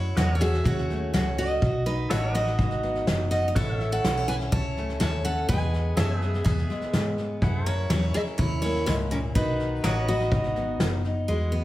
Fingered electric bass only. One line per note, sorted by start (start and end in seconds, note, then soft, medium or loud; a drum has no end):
0.00 0.16 F#2 medium
0.17 0.64 E2 medium
0.66 1.12 D#2 loud
1.14 1.61 C#2 loud
1.62 2.09 B1 medium
2.11 2.57 A1 medium
2.59 3.06 G#1 medium
3.07 3.54 F#1 medium
3.56 4.03 A1 medium
4.04 4.51 B1 medium
4.53 4.99 C#2 medium
5.01 5.47 D#2 loud
5.49 5.96 E2 medium
5.97 6.44 F#2 loud
6.46 6.68 E2 medium
6.94 7.40 G#2 loud
7.42 7.89 F#2 loud
7.90 8.13 E2 loud
8.15 muted fingered electric bass stroke soft
8.39 8.86 D#2 medium
8.87 9.34 C#2 loud
9.36 9.82 B1 medium
9.84 10.30 A1 medium
10.32 10.79 G#1 medium
10.80 11.27 F#1 medium
11.29 11.64 E2 medium